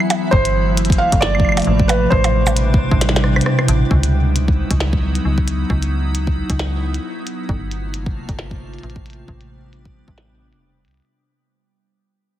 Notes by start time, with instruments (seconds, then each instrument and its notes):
Already playing: ambient pad E3 F#3 B3 E4, synth texture E4
0.00 claves
0.10 closed hi-hat, percussion blips
0.31 fm bass G1, ambient pad C3 F3 A3 A#3, felt piano C5, kick
0.45 closed hi-hat
0.77 closed hi-hat
0.85 closed hi-hat
0.90 kick, closed hi-hat
0.98 felt piano F5
1.12 fm bass G1, kick, closed hi-hat
1.21 felt piano D5, snare
1.35 claves
1.40 kick
1.45 claves
1.49 claves
1.52 claves
1.57 closed hi-hat, percussion blips
1.60 closed hi-hat
1.62 closed hi-hat
1.65 fm bass A1, closed hi-hat
1.79 kick
1.88 ambient pad B2 C3 G3 D4, felt piano B4, closed hi-hat, percussion blips
2.10 fm bass A1, felt piano C5, kick
2.24 closed hi-hat, percussion blips
2.47 percussion blips, cabasa
2.56 closed hi-hat
2.74 kick
2.91 fm bass A1, kick
3.01 snare, closed hi-hat
3.09 snare
3.16 snare
3.24 cross-stick
3.36 cross-stick, claves
3.41 closed hi-hat
3.46 cross-stick
3.59 cross-stick, claves
3.68 fm bass A1, closed hi-hat
3.91 fm bass C#2, ambient pad F#3 B3 D#4 E4, kick
4.03 closed hi-hat
4.36 closed hi-hat
4.48 kick
4.71 fm bass C#2, kick, closed hi-hat
4.80 snare
4.93 kick
5.15 closed hi-hat
5.25 fm bass C#2
5.38 kick
5.48 closed hi-hat
5.70 fm bass C#2, kick
5.83 closed hi-hat
6.15 closed hi-hat
6.27 kick
6.50 fm bass C#2, kick, closed hi-hat
6.59 snare
6.94 closed hi-hat
7.27 closed hi-hat
7.49 fm bass G1, ambient pad C3 A3 A#3 F4, kick
7.71 closed hi-hat
7.94 closed hi-hat
8.06 kick
8.29 fm bass G1, kick, closed hi-hat
8.39 snare
8.51 kick
8.74 closed hi-hat
8.79 closed hi-hat
8.83 fm bass A1, closed hi-hat
8.90 closed hi-hat
8.96 kick
9.06 ambient pad G3 B3 D4, closed hi-hat
9.10 closed hi-hat
9.13 closed hi-hat
9.28 fm bass A1, kick
9.41 closed hi-hat
9.73 closed hi-hat
9.85 kick
10.08 fm bass A1, kick
10.18 snare, closed hi-hat
10.53 fm bass E1, closed hi-hat
10.85 fm bass C2, closed hi-hat
10.88 closed hi-hat
10.91 closed hi-hat
10.97 closed hi-hat
11.00 closed hi-hat
11.05 closed hi-hat